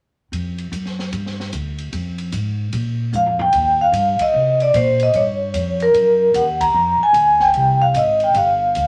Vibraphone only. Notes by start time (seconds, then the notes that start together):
3.16 F5
3.42 G5
3.81 F5
4.22 D#5
4.62 D5
4.76 C5
5.03 D#5
5.16 C#5
5.83 A#4
6.35 F#5
6.61 A#5
7.03 G#5
7.41 G5
7.82 F5
7.97 D#5
8.24 G5
8.37 F5